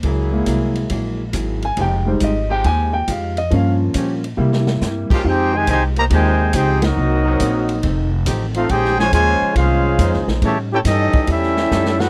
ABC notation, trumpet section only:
X:1
M:4/4
L:1/8
Q:"Swing" 1/4=139
K:Fm
V:1 name="Trumpet section"
z8 | z8 | z6 z [DGBf] | [EAcg] [EGca] [EGca] [Gceb] [Ecga]2 [EAcg] [C_GBe]- |
[C_GBe]4- [CGBe] z2 [E=Acf] | [EAcg] [Fcda] [Fcda]2 [DAcf]3 z | [G^c=e=a] [=E=Acg] [^CGA^d]2 [CGAe]3 [^DG=B_g] |]